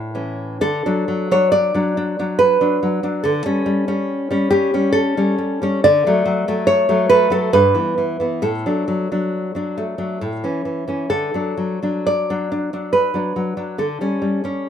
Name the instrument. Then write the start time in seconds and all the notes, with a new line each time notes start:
nylon-string guitar
Already playing: A2
0.15 E3 C#4
0.61 D3 A4
0.86 F#3 D4
1.08 F#3
1.31 F#3 D4 C#5
1.52 D5
1.74 F#3 D4
1.97 D4
2.19 F#3 D4
2.39 B4
2.61 F#3 D4
2.83 F#3
3.03 F#3 D4
3.24 D3 A4
3.46 G3 C#4
3.66 G3
3.88 G3 C#4
4.31 G3 C#4
4.51 C#4 G4
4.74 G3 C#4
4.93 A4
5.17 G3 C#4
5.38 G3
5.62 G3 C#4
5.84 D3 D5
6.07 F#3 A3
6.25 F#3
6.48 F#3 A3
6.67 C#5
6.89 F#3 A3
7.09 A3 B4
7.30 F#3 A3 A4
7.53 G2 B4
7.75 E3 B3
7.98 E3
8.20 E3 B3
8.42 A2 A4
8.66 F#3 D4
8.88 F#3
9.12 F#3 D4
9.55 F#3 D4
9.78 A3
9.98 F#3 D4
10.21 A2
10.44 E3 C#4
10.65 E3
10.88 E3 C#4
11.10 D3 A4
11.34 F#3 D4
11.57 F#3
11.83 F#3 D4
12.07 D5
12.30 F#3 D4
12.52 D4
12.73 F#3 D4
12.93 B4
13.14 F#3 D4
13.36 F#3
13.57 F#3 D4
13.78 D3 A4
14.01 G3 C#4
14.22 G3
14.44 G3 C#4